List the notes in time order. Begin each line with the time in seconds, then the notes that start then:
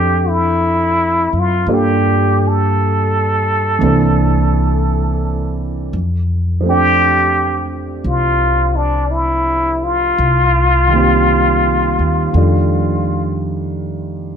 Already playing: F2 F3 A3 C4 D4 G4 A4 E5
0.29 E4
1.33 F#2
1.39 F4
1.67 G2 G3 A#3 D4 F4 A4
1.74 G4
2.48 A4
3.79 C2 E3 A#3 C4
3.83 D4 A4
5.93 F2
6.60 F3 A3
6.65 C4 D4 G4
6.71 G4
8.04 C2 F4
8.76 D4
9.11 E4
9.84 F4
10.18 C2
10.87 D#3 G3
10.93 A#3 C4
10.98 G4
11.99 D#2
12.33 F2 D#3 G3 A3 D4
12.37 F4